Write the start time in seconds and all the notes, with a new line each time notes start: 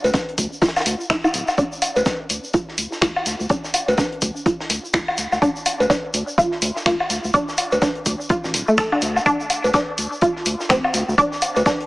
0.04 D2, closed hi-hat, cowbell, shaker
0.14 D4, kick, snare, closed hi-hat, shaker
0.29 closed hi-hat
0.38 D2, kick, closed hi-hat, open hi-hat, shaker
0.53 shaker
0.62 F4, kick, snare, closed hi-hat, shaker
0.68 snare, closed hi-hat
0.76 snare, closed hi-hat, low woodblock, shaker
0.80 snare, closed hi-hat
0.86 D2, snare, closed hi-hat, open hi-hat, shaker
1.00 shaker
1.10 E4, finger snap, kick, snare, closed hi-hat, shaker
1.24 E4, low woodblock, shaker
1.33 D1, snare, closed hi-hat, open hi-hat, shaker
1.47 snare, low woodblock, shaker
1.58 D4, kick, closed hi-hat, shaker
1.72 shaker
1.82 closed hi-hat, open hi-hat, low woodblock, shaker
1.96 D2, cowbell, shaker
2.05 D4, kick, snare, closed hi-hat, shaker
2.29 D2, closed hi-hat, open hi-hat, shaker
2.44 shaker
2.54 F4, kick, closed hi-hat, shaker
2.69 snare
2.78 D2, closed hi-hat, open hi-hat, shaker
2.92 snare, shaker
3.01 D2 F4, finger snap, kick, snare, closed hi-hat, shaker
3.16 low woodblock
3.26 D2, snare, closed hi-hat, open hi-hat, shaker
3.40 D2, shaker
3.49 D4, kick, closed hi-hat, shaker
3.64 snare, shaker
3.74 closed hi-hat, open hi-hat, low woodblock, shaker
3.88 D2, closed hi-hat, cowbell, shaker
3.97 D4, kick, snare, closed hi-hat, shaker
4.12 closed hi-hat
4.22 D2, kick, closed hi-hat, open hi-hat, shaker
4.36 shaker
4.46 F4, kick, closed hi-hat, shaker
4.60 snare
4.69 D2, snare, closed hi-hat, open hi-hat, shaker
4.85 shaker
4.93 D2 F4, finger snap, kick, snare, closed hi-hat, shaker
5.08 low woodblock
5.18 D2, snare, closed hi-hat, open hi-hat, shaker
5.32 D2, snare, low woodblock, shaker
5.42 D4, kick, closed hi-hat, shaker
5.56 shaker
5.66 closed hi-hat, open hi-hat, low woodblock, shaker
5.80 D2, cowbell, shaker
5.90 D4, kick, snare, closed hi-hat, shaker
6.14 D2, closed hi-hat, open hi-hat, shaker
6.28 shaker
6.38 F4, kick, closed hi-hat, shaker
6.52 snare
6.62 D2, closed hi-hat, open hi-hat, shaker
6.76 snare, shaker
6.86 D2 F4, finger snap, kick, snare, closed hi-hat, shaker
7.00 low woodblock
7.09 D2, snare, closed hi-hat, open hi-hat, shaker
7.24 D2, shaker
7.34 D4, kick, closed hi-hat, shaker
7.49 snare, shaker
7.57 closed hi-hat, open hi-hat, low woodblock, shaker
7.72 D2, closed hi-hat, cowbell, shaker
7.82 D4, kick, snare, closed hi-hat, shaker
7.95 closed hi-hat
8.06 D2, kick, closed hi-hat, open hi-hat, shaker
8.21 shaker
8.29 F4, kick, closed hi-hat, shaker
8.44 A1, snare, shaker
8.54 D1, snare, closed hi-hat, open hi-hat, shaker
8.68 A3, shaker
8.78 A4, finger snap, kick, snare, closed hi-hat, shaker
8.92 D4, low woodblock
9.02 D2, snare, closed hi-hat, open hi-hat, shaker
9.16 snare, low woodblock, shaker
9.26 D4, kick, closed hi-hat, shaker
9.40 shaker
9.50 closed hi-hat, open hi-hat, low woodblock, shaker
9.64 D2, cowbell, shaker
9.74 D4, kick, snare, closed hi-hat, shaker
9.98 D2, closed hi-hat, open hi-hat, shaker
10.13 shaker
10.21 F4, kick, closed hi-hat, shaker
10.36 snare
10.46 D2, closed hi-hat, open hi-hat, shaker
10.60 snare, shaker
10.69 D2 C4, finger snap, kick, snare, closed hi-hat, shaker
10.84 low woodblock
10.93 D2, snare, closed hi-hat, open hi-hat, shaker
11.08 D2, shaker
11.18 D4, kick, closed hi-hat, shaker
11.32 snare, shaker
11.42 closed hi-hat, open hi-hat, low woodblock, shaker
11.56 D2, closed hi-hat, cowbell, shaker
11.66 D4, kick, snare, closed hi-hat, shaker
11.80 closed hi-hat